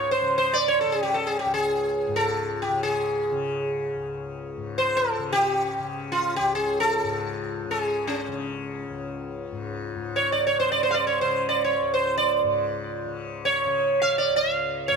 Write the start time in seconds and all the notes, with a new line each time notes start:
Already playing: C#2 G#2 C#3 C#5
0.11 C5
0.21 C#3
0.38 C5
0.53 D5
0.68 C#5
0.81 C#3 A4
0.92 G#4
1.03 G4
1.14 A4
1.27 G#4
1.39 G4
1.45 C#2
1.54 G#4
2.08 G#2
2.16 A4
2.62 G4
2.69 C#3
2.83 G#4
3.32 C#3
3.95 C#2
4.57 G#2
4.78 C5
4.97 A4
5.19 C#3
5.33 G4
5.79 C#3
6.12 F4
6.36 C#2 G4
6.55 G#4
6.80 A4
7.04 G#2
7.65 C#3
7.71 G#4
8.07 C#4
8.28 C#3
8.90 C#2
9.52 G#2
9.96 G#2
10.16 C#5
10.32 D5
10.47 C#5
10.58 C#3 C5
10.72 D5
10.83 C5
10.91 D5 F5
11.07 C#5
11.21 C#3 C5
11.49 D5
11.64 C#5
11.81 C#2
11.94 C5
12.18 D5
12.43 G#2
13.05 C#3
13.45 C#5
13.66 C#3
14.02 F5
14.18 D5
14.28 C#2
14.36 F5
14.88 G#2 C#5